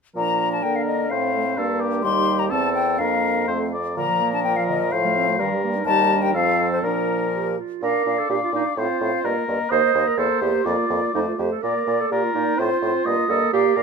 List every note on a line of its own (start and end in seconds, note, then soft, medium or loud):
0.15 0.61 A#2 soft
0.15 0.64 F3 soft
0.15 1.12 D4 soft
0.15 1.13 A#4 soft
0.15 0.50 A#5 medium
0.52 0.64 A5 medium
0.62 1.10 D3 soft
0.62 1.08 A#3 soft
0.62 0.77 G5 medium
0.76 0.85 F5 soft
0.86 1.11 D#5 soft
1.09 1.56 A2 soft
1.09 1.33 C4 soft
1.09 1.59 C4 soft
1.09 1.59 C5 soft
1.09 1.80 F5 soft
1.34 1.44 A3 soft
1.57 2.02 G2 soft
1.57 2.05 A#3 soft
1.57 2.04 D4 soft
1.57 1.82 A4 soft
1.80 2.03 G4 soft
2.03 2.50 D#2 medium
2.03 2.52 G3 soft
2.03 2.53 D#4 soft
2.03 2.52 G4 soft
2.03 2.41 C6 medium
2.39 2.49 A#5 soft
2.49 2.99 E2 medium
2.49 2.99 C4 soft
2.49 3.00 C4 soft
2.49 3.02 A4 soft
2.49 2.73 A5 medium
2.74 3.00 G5 medium
2.98 3.47 F2 soft
2.98 3.50 A#3 soft
2.98 3.47 D4 soft
2.98 3.47 A#4 soft
2.98 3.72 F5 medium
3.48 3.96 F2 soft
3.48 3.73 A3 soft
3.48 3.72 C4 soft
3.48 3.59 C5 soft
3.73 3.96 D5 soft
3.96 4.88 A#2 soft
3.96 4.10 D3 soft
3.96 5.39 F3 soft
3.96 4.94 A#4 soft
3.96 4.30 A#5 medium
4.09 4.22 F3 soft
4.21 4.35 A#3 soft
4.33 4.46 D4 soft
4.33 4.43 A5 medium
4.43 4.57 A#3 soft
4.43 4.58 G5 medium
4.56 4.70 F3 soft
4.56 4.67 F5 soft
4.68 4.82 D3 soft
4.68 4.93 D#5 medium
4.80 4.92 F3 soft
4.91 5.38 A2 soft
4.91 5.06 F3 soft
4.91 5.41 C5 soft
4.91 5.62 F5 medium
5.05 5.18 A3 soft
5.17 5.30 C4 soft
5.29 5.39 A3 soft
5.38 5.85 G2 soft
5.38 5.54 D#3 soft
5.38 5.85 G3 soft
5.38 5.86 A#4 soft
5.53 5.66 G3 soft
5.64 5.78 A#3 soft
5.76 5.87 D#4 soft
5.85 6.35 D#2 medium
5.85 6.34 G3 soft
5.85 6.09 D#4 soft
5.85 6.36 A#4 soft
5.85 6.24 A5 medium
6.12 6.35 D4 soft
6.22 6.34 G5 medium
6.32 6.82 F2 soft
6.32 6.82 F3 soft
6.32 6.83 C4 soft
6.32 6.85 A4 soft
6.32 6.70 F5 medium
6.72 6.82 C5 soft
6.83 7.57 A#2 soft
6.83 7.56 F3 soft
6.83 7.28 D4 soft
6.83 7.57 A#4 medium
6.83 7.58 A#4 soft
7.33 7.60 G4 soft
7.58 7.82 F4 soft
7.82 7.93 A#2 soft
7.82 8.06 D4 soft
7.82 8.20 A#4 medium
7.82 8.79 D5 soft
7.82 8.06 F5 soft
8.06 8.17 A#2 soft
8.06 8.29 D4 soft
8.06 8.30 F5 soft
8.19 8.29 A4 medium
8.29 8.40 A#2 soft
8.29 8.53 D4 soft
8.29 8.35 G4 medium
8.29 8.53 F5 soft
8.44 8.54 F4 medium
8.53 8.64 A#2 soft
8.53 8.77 D4 soft
8.53 8.66 D#4 medium
8.53 8.77 F5 soft
8.77 8.88 A2 soft
8.77 9.01 C4 soft
8.77 9.47 F4 medium
8.77 9.26 C5 soft
8.77 9.00 F5 soft
9.01 9.11 A2 soft
9.01 9.24 C4 soft
9.01 9.23 F5 soft
9.23 9.35 G2 soft
9.23 9.47 A#3 soft
9.23 9.72 A#4 medium
9.23 9.46 D#5 soft
9.48 9.58 G2 soft
9.48 9.70 A#3 soft
9.48 9.70 D#5 soft
9.70 9.81 D#2 medium
9.70 9.93 A#3 medium
9.70 10.09 C5 medium
9.70 10.17 D#5 medium
9.70 9.94 D#5 soft
9.94 10.05 D#2 medium
9.94 10.17 A#3 soft
9.94 10.16 D#5 soft
10.07 10.20 A#4 medium
10.17 10.28 E2 soft
10.17 10.41 A#3 soft
10.17 10.41 A4 medium
10.17 10.40 C5 soft
10.17 10.66 C5 medium
10.41 10.52 E2 soft
10.41 10.65 A#3 soft
10.41 10.66 G4 medium
10.41 10.65 C5 soft
10.65 10.76 F2 medium
10.65 10.88 A#3 soft
10.65 11.14 F4 medium
10.65 11.39 D5 soft
10.65 10.88 D5 soft
10.89 11.01 F2 soft
10.89 11.13 A#3 soft
10.89 11.13 D5 soft
11.13 11.26 F2 soft
11.13 11.38 A3 soft
11.13 11.20 D#4 medium
11.13 11.36 C5 soft
11.27 11.40 F4 soft
11.37 11.50 F2 soft
11.37 11.62 A3 soft
11.37 11.50 G4 medium
11.37 11.61 C5 soft
11.51 11.64 A4 medium
11.62 11.74 A#2 soft
11.62 11.86 A#3 soft
11.62 12.02 A#4 medium
11.62 11.85 D5 soft
11.62 12.08 D5 medium
11.86 11.98 A#2 soft
11.86 12.09 A#3 soft
11.86 12.09 D5 soft
12.00 12.13 A4 medium
12.10 12.22 A#2 soft
12.10 12.33 A#3 soft
12.10 12.25 G4 medium
12.10 12.60 A#4 medium
12.10 12.33 D5 soft
12.23 12.36 F4 medium
12.33 12.46 A#2 soft
12.33 12.56 A#3 soft
12.33 12.61 D#4 medium
12.33 12.58 D5 soft
12.57 12.69 A2 medium
12.57 12.81 C4 soft
12.57 13.31 F4 medium
12.57 13.07 C5 medium
12.57 12.82 C5 soft
12.81 12.93 A2 medium
12.81 13.04 C4 soft
12.81 13.06 C5 soft
13.05 13.17 G2 medium
13.05 13.28 A#3 soft
13.05 13.52 D#5 medium
13.05 13.28 D#5 soft
13.28 13.40 G2 soft
13.28 13.52 A#3 soft
13.28 13.52 A4 medium
13.28 13.52 D#5 soft
13.53 13.64 A#2 medium
13.53 13.76 A#3 medium
13.53 13.78 G4 medium
13.53 13.83 D5 medium
13.53 13.75 F5 medium
13.75 13.83 A#2 soft
13.75 13.83 A#3 soft
13.75 13.83 A#4 medium
13.75 13.83 F5 soft